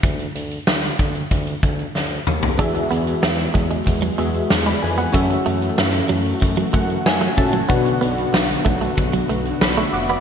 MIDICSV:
0, 0, Header, 1, 7, 480
1, 0, Start_track
1, 0, Tempo, 638298
1, 28, Time_signature, 4, 2, 24, 8
1, 7671, End_track
2, 0, Start_track
2, 0, Title_t, "Synth keys"
2, 0, Program_c, 0, 88
2, 1936, Note_on_c, 0, 59, 68
2, 1944, Note_on_c, 0, 66, 69
2, 1947, Note_on_c, 0, 52, 73
2, 1948, Note_on_c, 0, 68, 66
2, 1956, Note_on_c, 0, 76, 77
2, 2100, Control_c, 0, 64, 127
2, 2638, Note_off_c, 0, 52, 0
2, 3118, Note_off_c, 0, 59, 0
2, 3122, Note_off_c, 0, 66, 0
2, 3124, Note_off_c, 0, 68, 0
2, 3128, Note_off_c, 0, 76, 0
2, 3144, Note_on_c, 0, 59, 55
2, 3149, Note_on_c, 0, 66, 52
2, 3151, Note_on_c, 0, 68, 53
2, 3152, Note_on_c, 0, 76, 62
2, 3390, Note_off_c, 0, 76, 0
2, 3509, Note_on_c, 0, 83, 63
2, 3512, Note_on_c, 0, 74, 53
2, 3623, Note_off_c, 0, 83, 0
2, 3624, Note_off_c, 0, 74, 0
2, 3626, Note_on_c, 0, 80, 63
2, 3631, Note_on_c, 0, 71, 53
2, 3741, Note_off_c, 0, 80, 0
2, 3744, Note_off_c, 0, 71, 0
2, 3746, Note_on_c, 0, 78, 63
2, 3850, Note_off_c, 0, 66, 0
2, 3853, Note_on_c, 0, 61, 72
2, 3859, Note_on_c, 0, 66, 63
2, 3865, Note_on_c, 0, 69, 67
2, 3866, Note_off_c, 0, 59, 0
2, 3870, Note_off_c, 0, 68, 0
2, 3870, Note_on_c, 0, 76, 77
2, 3878, Control_c, 0, 64, 0
2, 3975, Note_off_c, 0, 78, 0
2, 3997, Control_c, 0, 64, 127
2, 5066, Note_on_c, 0, 78, 73
2, 5290, Note_off_c, 0, 78, 0
2, 5308, Note_on_c, 0, 80, 74
2, 5510, Note_off_c, 0, 61, 0
2, 5513, Note_off_c, 0, 66, 0
2, 5516, Note_off_c, 0, 69, 0
2, 5519, Note_off_c, 0, 76, 0
2, 5531, Note_off_c, 0, 80, 0
2, 5542, Note_on_c, 0, 61, 52
2, 5546, Note_on_c, 0, 66, 48
2, 5547, Note_on_c, 0, 81, 67
2, 5548, Note_on_c, 0, 69, 45
2, 5551, Note_on_c, 0, 76, 57
2, 5771, Note_off_c, 0, 81, 0
2, 5775, Note_off_c, 0, 66, 0
2, 5777, Note_on_c, 0, 62, 71
2, 5784, Note_on_c, 0, 66, 63
2, 5785, Note_off_c, 0, 61, 0
2, 5787, Note_on_c, 0, 47, 74
2, 5788, Note_off_c, 0, 69, 0
2, 5788, Note_on_c, 0, 71, 67
2, 5789, Note_off_c, 0, 76, 0
2, 5794, Note_on_c, 0, 78, 81
2, 5796, Control_c, 0, 64, 0
2, 5912, Control_c, 0, 64, 127
2, 6477, Note_off_c, 0, 47, 0
2, 7202, Note_off_c, 0, 78, 0
2, 7228, Note_on_c, 0, 83, 65
2, 7233, Note_on_c, 0, 74, 54
2, 7342, Note_off_c, 0, 83, 0
2, 7345, Note_off_c, 0, 74, 0
2, 7349, Note_on_c, 0, 85, 67
2, 7354, Note_on_c, 0, 76, 57
2, 7462, Note_off_c, 0, 85, 0
2, 7465, Note_off_c, 0, 76, 0
2, 7467, Note_on_c, 0, 86, 69
2, 7471, Note_on_c, 0, 78, 57
2, 7582, Note_off_c, 0, 86, 0
2, 7584, Note_off_c, 0, 78, 0
2, 7589, Note_on_c, 0, 83, 66
2, 7592, Note_on_c, 0, 74, 55
2, 7671, Note_off_c, 0, 62, 0
2, 7671, Note_off_c, 0, 66, 0
2, 7671, Note_off_c, 0, 71, 0
2, 7671, Note_off_c, 0, 74, 0
2, 7671, Note_off_c, 0, 83, 0
2, 7671, End_track
3, 0, Start_track
3, 0, Title_t, "Clean electric guitar"
3, 0, Program_c, 1, 27
3, 1947, Note_on_c, 1, 62, 77
3, 2025, Note_off_c, 1, 62, 0
3, 2186, Note_on_c, 1, 59, 74
3, 2264, Note_off_c, 1, 59, 0
3, 2662, Note_on_c, 1, 56, 75
3, 2742, Note_off_c, 1, 56, 0
3, 2788, Note_on_c, 1, 56, 64
3, 2865, Note_off_c, 1, 56, 0
3, 3024, Note_on_c, 1, 54, 79
3, 3103, Note_off_c, 1, 54, 0
3, 3145, Note_on_c, 1, 56, 77
3, 3224, Note_off_c, 1, 56, 0
3, 3506, Note_on_c, 1, 56, 71
3, 3585, Note_off_c, 1, 56, 0
3, 3744, Note_on_c, 1, 59, 71
3, 3823, Note_off_c, 1, 59, 0
3, 3861, Note_on_c, 1, 54, 82
3, 3941, Note_off_c, 1, 54, 0
3, 4105, Note_on_c, 1, 57, 78
3, 4184, Note_off_c, 1, 57, 0
3, 4582, Note_on_c, 1, 54, 71
3, 4662, Note_off_c, 1, 54, 0
3, 4943, Note_on_c, 1, 54, 82
3, 5022, Note_off_c, 1, 54, 0
3, 5062, Note_on_c, 1, 57, 76
3, 5142, Note_off_c, 1, 57, 0
3, 5423, Note_on_c, 1, 57, 71
3, 5502, Note_off_c, 1, 57, 0
3, 5664, Note_on_c, 1, 54, 69
3, 5743, Note_off_c, 1, 54, 0
3, 5781, Note_on_c, 1, 59, 80
3, 5861, Note_off_c, 1, 59, 0
3, 6025, Note_on_c, 1, 59, 78
3, 6104, Note_off_c, 1, 59, 0
3, 6503, Note_on_c, 1, 57, 76
3, 6582, Note_off_c, 1, 57, 0
3, 6627, Note_on_c, 1, 57, 69
3, 6705, Note_off_c, 1, 57, 0
3, 6869, Note_on_c, 1, 54, 79
3, 6946, Note_off_c, 1, 54, 0
3, 6989, Note_on_c, 1, 57, 76
3, 7067, Note_off_c, 1, 57, 0
3, 7351, Note_on_c, 1, 57, 80
3, 7428, Note_off_c, 1, 57, 0
3, 7594, Note_on_c, 1, 59, 70
3, 7670, Note_off_c, 1, 59, 0
3, 7671, End_track
4, 0, Start_track
4, 0, Title_t, "Analog synth pad"
4, 0, Program_c, 2, 89
4, 1953, Note_on_c, 2, 52, 79
4, 1953, Note_on_c, 2, 56, 77
4, 1953, Note_on_c, 2, 66, 92
4, 3851, Note_off_c, 2, 56, 0
4, 3874, Note_on_c, 2, 57, 76
4, 5761, Note_off_c, 2, 52, 0
4, 5772, Note_off_c, 2, 57, 0
4, 5789, Note_on_c, 2, 50, 80
4, 5793, Note_on_c, 2, 59, 76
4, 7671, Note_off_c, 2, 50, 0
4, 7671, Note_off_c, 2, 59, 0
4, 7671, Note_off_c, 2, 66, 0
4, 7671, End_track
5, 0, Start_track
5, 0, Title_t, "Analog synth bass"
5, 0, Program_c, 3, 38
5, 27, Note_on_c, 3, 38, 105
5, 200, Note_off_c, 3, 38, 0
5, 266, Note_on_c, 3, 38, 90
5, 439, Note_off_c, 3, 38, 0
5, 510, Note_on_c, 3, 38, 92
5, 682, Note_off_c, 3, 38, 0
5, 748, Note_on_c, 3, 38, 98
5, 921, Note_off_c, 3, 38, 0
5, 986, Note_on_c, 3, 38, 102
5, 1159, Note_off_c, 3, 38, 0
5, 1227, Note_on_c, 3, 38, 90
5, 1400, Note_off_c, 3, 38, 0
5, 1472, Note_on_c, 3, 38, 100
5, 1643, Note_off_c, 3, 38, 0
5, 1712, Note_on_c, 3, 39, 88
5, 1883, Note_off_c, 3, 39, 0
5, 1948, Note_on_c, 3, 40, 111
5, 2121, Note_off_c, 3, 40, 0
5, 2191, Note_on_c, 3, 40, 95
5, 2363, Note_off_c, 3, 40, 0
5, 2432, Note_on_c, 3, 40, 107
5, 2603, Note_off_c, 3, 40, 0
5, 2671, Note_on_c, 3, 40, 104
5, 2843, Note_off_c, 3, 40, 0
5, 2910, Note_on_c, 3, 40, 105
5, 3082, Note_off_c, 3, 40, 0
5, 3152, Note_on_c, 3, 40, 95
5, 3324, Note_off_c, 3, 40, 0
5, 3393, Note_on_c, 3, 40, 102
5, 3564, Note_off_c, 3, 40, 0
5, 3636, Note_on_c, 3, 41, 96
5, 3806, Note_off_c, 3, 41, 0
5, 3868, Note_on_c, 3, 42, 99
5, 4041, Note_off_c, 3, 42, 0
5, 4114, Note_on_c, 3, 42, 94
5, 4285, Note_off_c, 3, 42, 0
5, 4351, Note_on_c, 3, 42, 107
5, 4523, Note_off_c, 3, 42, 0
5, 4590, Note_on_c, 3, 42, 99
5, 4762, Note_off_c, 3, 42, 0
5, 4830, Note_on_c, 3, 42, 102
5, 5002, Note_off_c, 3, 42, 0
5, 5067, Note_on_c, 3, 42, 94
5, 5240, Note_off_c, 3, 42, 0
5, 5309, Note_on_c, 3, 42, 97
5, 5481, Note_off_c, 3, 42, 0
5, 5549, Note_on_c, 3, 34, 86
5, 5721, Note_off_c, 3, 34, 0
5, 5790, Note_on_c, 3, 35, 92
5, 5962, Note_off_c, 3, 35, 0
5, 6029, Note_on_c, 3, 35, 95
5, 6201, Note_off_c, 3, 35, 0
5, 6265, Note_on_c, 3, 35, 90
5, 6439, Note_off_c, 3, 35, 0
5, 6513, Note_on_c, 3, 35, 104
5, 6684, Note_off_c, 3, 35, 0
5, 6751, Note_on_c, 3, 35, 105
5, 6923, Note_off_c, 3, 35, 0
5, 6987, Note_on_c, 3, 35, 97
5, 7160, Note_off_c, 3, 35, 0
5, 7225, Note_on_c, 3, 35, 100
5, 7399, Note_off_c, 3, 35, 0
5, 7468, Note_on_c, 3, 29, 88
5, 7641, Note_off_c, 3, 29, 0
5, 7671, End_track
6, 0, Start_track
6, 0, Title_t, "Muted clean electric guitar strokes"
6, 2066, Note_on_c, 9, 29, 44
6, 2141, Note_off_c, 9, 29, 0
6, 2424, Note_on_c, 9, 29, 40
6, 2500, Note_off_c, 9, 29, 0
6, 2903, Note_on_c, 9, 29, 44
6, 2978, Note_off_c, 9, 29, 0
6, 3628, Note_on_c, 9, 29, 42
6, 3703, Note_off_c, 9, 29, 0
6, 3986, Note_on_c, 9, 29, 43
6, 4062, Note_off_c, 9, 29, 0
6, 4823, Note_on_c, 9, 29, 44
6, 4898, Note_off_c, 9, 29, 0
6, 5545, Note_on_c, 9, 29, 46
6, 5620, Note_off_c, 9, 29, 0
6, 5906, Note_on_c, 9, 29, 41
6, 5981, Note_off_c, 9, 29, 0
6, 6263, Note_on_c, 9, 29, 41
6, 6338, Note_off_c, 9, 29, 0
6, 6748, Note_on_c, 9, 29, 48
6, 6823, Note_off_c, 9, 29, 0
6, 7474, Note_on_c, 9, 29, 46
6, 7549, Note_off_c, 9, 29, 0
6, 7671, End_track
7, 0, Start_track
7, 0, Title_t, "Drums"
7, 24, Note_on_c, 9, 42, 86
7, 25, Note_on_c, 9, 36, 101
7, 99, Note_off_c, 9, 42, 0
7, 101, Note_off_c, 9, 36, 0
7, 144, Note_on_c, 9, 42, 55
7, 219, Note_off_c, 9, 42, 0
7, 267, Note_on_c, 9, 42, 72
7, 342, Note_off_c, 9, 42, 0
7, 385, Note_on_c, 9, 42, 56
7, 460, Note_off_c, 9, 42, 0
7, 505, Note_on_c, 9, 38, 112
7, 580, Note_off_c, 9, 38, 0
7, 626, Note_on_c, 9, 42, 53
7, 701, Note_off_c, 9, 42, 0
7, 746, Note_on_c, 9, 42, 68
7, 747, Note_on_c, 9, 36, 85
7, 821, Note_off_c, 9, 42, 0
7, 822, Note_off_c, 9, 36, 0
7, 864, Note_on_c, 9, 42, 51
7, 939, Note_off_c, 9, 42, 0
7, 984, Note_on_c, 9, 42, 79
7, 987, Note_on_c, 9, 36, 80
7, 1059, Note_off_c, 9, 42, 0
7, 1062, Note_off_c, 9, 36, 0
7, 1104, Note_on_c, 9, 42, 59
7, 1179, Note_off_c, 9, 42, 0
7, 1226, Note_on_c, 9, 36, 92
7, 1227, Note_on_c, 9, 42, 75
7, 1301, Note_off_c, 9, 36, 0
7, 1302, Note_off_c, 9, 42, 0
7, 1344, Note_on_c, 9, 42, 45
7, 1420, Note_off_c, 9, 42, 0
7, 1467, Note_on_c, 9, 38, 54
7, 1543, Note_off_c, 9, 38, 0
7, 1706, Note_on_c, 9, 45, 84
7, 1781, Note_off_c, 9, 45, 0
7, 1826, Note_on_c, 9, 43, 84
7, 1901, Note_off_c, 9, 43, 0
7, 1947, Note_on_c, 9, 36, 98
7, 1947, Note_on_c, 9, 42, 87
7, 2022, Note_off_c, 9, 42, 0
7, 2023, Note_off_c, 9, 36, 0
7, 2067, Note_on_c, 9, 42, 53
7, 2142, Note_off_c, 9, 42, 0
7, 2190, Note_on_c, 9, 42, 73
7, 2265, Note_off_c, 9, 42, 0
7, 2309, Note_on_c, 9, 42, 59
7, 2384, Note_off_c, 9, 42, 0
7, 2428, Note_on_c, 9, 38, 104
7, 2503, Note_off_c, 9, 38, 0
7, 2550, Note_on_c, 9, 42, 53
7, 2625, Note_off_c, 9, 42, 0
7, 2669, Note_on_c, 9, 36, 84
7, 2669, Note_on_c, 9, 42, 74
7, 2744, Note_off_c, 9, 36, 0
7, 2744, Note_off_c, 9, 42, 0
7, 2789, Note_on_c, 9, 42, 52
7, 2864, Note_off_c, 9, 42, 0
7, 2909, Note_on_c, 9, 36, 79
7, 2909, Note_on_c, 9, 42, 80
7, 2985, Note_off_c, 9, 36, 0
7, 2985, Note_off_c, 9, 42, 0
7, 3028, Note_on_c, 9, 42, 64
7, 3103, Note_off_c, 9, 42, 0
7, 3149, Note_on_c, 9, 42, 72
7, 3224, Note_off_c, 9, 42, 0
7, 3266, Note_on_c, 9, 42, 48
7, 3341, Note_off_c, 9, 42, 0
7, 3387, Note_on_c, 9, 38, 117
7, 3462, Note_off_c, 9, 38, 0
7, 3507, Note_on_c, 9, 42, 56
7, 3582, Note_off_c, 9, 42, 0
7, 3629, Note_on_c, 9, 46, 69
7, 3704, Note_off_c, 9, 46, 0
7, 3746, Note_on_c, 9, 42, 54
7, 3821, Note_off_c, 9, 42, 0
7, 3866, Note_on_c, 9, 42, 87
7, 3867, Note_on_c, 9, 36, 100
7, 3941, Note_off_c, 9, 42, 0
7, 3943, Note_off_c, 9, 36, 0
7, 3986, Note_on_c, 9, 42, 56
7, 4062, Note_off_c, 9, 42, 0
7, 4110, Note_on_c, 9, 42, 71
7, 4185, Note_off_c, 9, 42, 0
7, 4227, Note_on_c, 9, 42, 56
7, 4302, Note_off_c, 9, 42, 0
7, 4347, Note_on_c, 9, 38, 108
7, 4422, Note_off_c, 9, 38, 0
7, 4469, Note_on_c, 9, 42, 56
7, 4544, Note_off_c, 9, 42, 0
7, 4587, Note_on_c, 9, 42, 69
7, 4662, Note_off_c, 9, 42, 0
7, 4707, Note_on_c, 9, 42, 49
7, 4782, Note_off_c, 9, 42, 0
7, 4829, Note_on_c, 9, 36, 78
7, 4829, Note_on_c, 9, 42, 82
7, 4904, Note_off_c, 9, 36, 0
7, 4904, Note_off_c, 9, 42, 0
7, 4947, Note_on_c, 9, 42, 62
7, 5022, Note_off_c, 9, 42, 0
7, 5068, Note_on_c, 9, 36, 93
7, 5069, Note_on_c, 9, 42, 73
7, 5143, Note_off_c, 9, 36, 0
7, 5144, Note_off_c, 9, 42, 0
7, 5187, Note_on_c, 9, 42, 47
7, 5263, Note_off_c, 9, 42, 0
7, 5310, Note_on_c, 9, 38, 110
7, 5385, Note_off_c, 9, 38, 0
7, 5429, Note_on_c, 9, 42, 55
7, 5504, Note_off_c, 9, 42, 0
7, 5549, Note_on_c, 9, 36, 84
7, 5553, Note_on_c, 9, 46, 64
7, 5624, Note_off_c, 9, 36, 0
7, 5628, Note_off_c, 9, 46, 0
7, 5666, Note_on_c, 9, 42, 52
7, 5741, Note_off_c, 9, 42, 0
7, 5789, Note_on_c, 9, 36, 98
7, 5789, Note_on_c, 9, 42, 90
7, 5864, Note_off_c, 9, 36, 0
7, 5864, Note_off_c, 9, 42, 0
7, 5909, Note_on_c, 9, 42, 57
7, 5984, Note_off_c, 9, 42, 0
7, 6033, Note_on_c, 9, 42, 71
7, 6108, Note_off_c, 9, 42, 0
7, 6151, Note_on_c, 9, 42, 57
7, 6226, Note_off_c, 9, 42, 0
7, 6271, Note_on_c, 9, 38, 113
7, 6347, Note_off_c, 9, 38, 0
7, 6396, Note_on_c, 9, 42, 60
7, 6471, Note_off_c, 9, 42, 0
7, 6511, Note_on_c, 9, 36, 89
7, 6514, Note_on_c, 9, 42, 68
7, 6587, Note_off_c, 9, 36, 0
7, 6589, Note_off_c, 9, 42, 0
7, 6635, Note_on_c, 9, 42, 56
7, 6710, Note_off_c, 9, 42, 0
7, 6751, Note_on_c, 9, 36, 80
7, 6752, Note_on_c, 9, 42, 86
7, 6826, Note_off_c, 9, 36, 0
7, 6828, Note_off_c, 9, 42, 0
7, 6870, Note_on_c, 9, 42, 65
7, 6945, Note_off_c, 9, 42, 0
7, 6992, Note_on_c, 9, 42, 68
7, 7068, Note_off_c, 9, 42, 0
7, 7109, Note_on_c, 9, 42, 48
7, 7184, Note_off_c, 9, 42, 0
7, 7230, Note_on_c, 9, 38, 108
7, 7305, Note_off_c, 9, 38, 0
7, 7348, Note_on_c, 9, 42, 54
7, 7424, Note_off_c, 9, 42, 0
7, 7471, Note_on_c, 9, 46, 62
7, 7546, Note_off_c, 9, 46, 0
7, 7589, Note_on_c, 9, 42, 55
7, 7664, Note_off_c, 9, 42, 0
7, 7671, End_track
0, 0, End_of_file